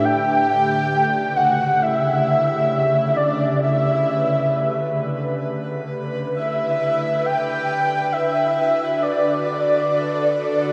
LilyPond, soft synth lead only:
\new Staff \with { instrumentName = "Soft synth lead" } { \time 4/4 \key a \mixolydian \tempo 4 = 67 g''4. fis''8 e''4. d''8 | e''2 r4 e''4 | g''4 e''4 d''2 | }